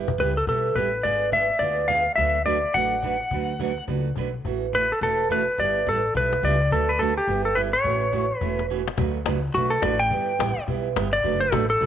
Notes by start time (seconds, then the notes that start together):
Already playing: G1 G3 B3 E4 G4
0.08 cajon bass
0.18 C#2 G3 B3 E4 G4 B4, cajon bass, cajon slap
0.37 A4, cajon slap
0.47 B1 G3 B3 E4 G4 A4, cajon bass, cajon slap
0.75 A1 G3 B3 E4 G4 B4, cajon bass, cajon slap
0.94 cajon slap
1.03 G#1 D3 G#3 B3 F4 G#4 D5, cajon bass, cajon slap
1.32 D3 G#3 B3 F4 G#4 E5, cajon bass, cajon slap
1.50 cajon slap
1.59 D2 D3 G#3 B3 F4 G#4 D5, cajon bass, cajon slap
1.88 D3 G#3 B3 F4 G#4 F5, cajon bass, cajon slap
2.07 cajon slap
2.16 D2 D3 F#3 A3 D4 F#4 B4 E5, cajon bass, cajon slap
2.45 D3 F#3 A3 D4 F#4 B4 D5, cajon bass, cajon slap
2.64 cajon slap
2.74 A1 D3 F#3 A3 D4 F#4 B4 F#5, cajon bass, cajon slap
3.02 D3 F#3 A3 D4 F#4 B4, cajon bass, cajon slap
3.20 cajon slap
3.31 D2 D3 F#3 A3 D4 F#4 B4, cajon bass, cajon slap
3.59 D3 F#3 A3 D4 F#4 B4, cajon bass, cajon slap
3.78 cajon slap
3.87 C#2 D3 F#3 A3 D4 F#4 B4, cajon bass, cajon slap
4.16 B1 D3 F#3 A3 D4 F#4 B4, cajon bass, cajon slap
4.34 cajon slap
4.45 A1 C#3 E3 A3 C#4 F#4, cajon bass, cajon slap
4.73 C#3 E3 A3 C#4 F#4 B4, cajon bass, cajon slap
4.91 A4, cajon slap
5.01 E1 C#3 E3 A3 C#4 F#4 A4, cajon bass, cajon slap
5.30 C#3 E3 A3 C#4 F#4 B4, cajon bass, cajon slap
5.48 cajon slap
5.58 G1 G3 B3 E4 G4 D5, cajon bass, cajon slap
5.86 A1 G3 B3 E4 G4 A4, cajon bass, cajon slap
6.14 B1 G3 B3 E4 G4 B4, cajon bass, cajon slap
6.33 cajon slap
6.42 C#2 G3 B3 E4 G4 D5, cajon bass, cajon slap
6.62 cajon slap
6.71 D2 D3 F#3 A3 D4 F#4 A4 B4, cajon bass, cajon slap
6.89 B4
6.99 D3 F#3 A3 D4 F#4 A4 B4, cajon bass, cajon slap
7.18 G4, cajon slap
7.27 G1 G3 B3 E4 G4, cajon bass, cajon slap
7.45 A4
7.55 G3 B3 E4 G4 B4, cajon bass, cajon slap
7.73 C#5, cajon slap
7.84 A1 C#3 E3 A3 C#4 F#4, cajon bass, cajon slap
8.12 C#3 E3 A3 C#4 F#4, cajon bass, cajon slap
8.31 cajon slap
8.38 E1 C#3 E3 A3 C#4 B4, cajon bass, cajon slap
8.42 F#4
8.59 cajon slap
8.70 C#3 E3 A3 C#4 F#4
8.88 cajon slap
8.97 D2 D3 F#3 A3 D4 F#4 B4, cajon bass
9.26 C#2 D3 F#3 A3 D4 F#4 B4, cajon bass, cajon slap
9.54 B1 D3 F#3 A3 D4 F#4 B4, cajon bass, cajon slap
9.70 A4
9.82 A1 D3 F#3 A3 D4 F#4 B4 D5, cajon bass, cajon slap
9.99 G5, cajon slap
10.11 G1 G3 B3 E4 G4, cajon bass, cajon slap
10.39 A1 G3 B3 E4 G4, cajon bass, cajon slap
10.57 muted upright bass stroke, cajon slap
10.68 B1 G3 B3 E4 G4, cajon bass, cajon slap
10.96 G1 G3 B3 E4 G4, cajon bass, cajon slap
11.13 D5, cajon slap
11.24 F#1 D3 F#3 A3 D4 F#4 B4, cajon bass, cajon slap
11.40 C5
11.52 A1 D3 F#3 A3 D4 F#4 A4 B4, cajon bass, cajon slap
11.70 A4, cajon slap
11.81 B1 D3 F#3 A3 D4 F#4 B4, cajon bass, cajon slap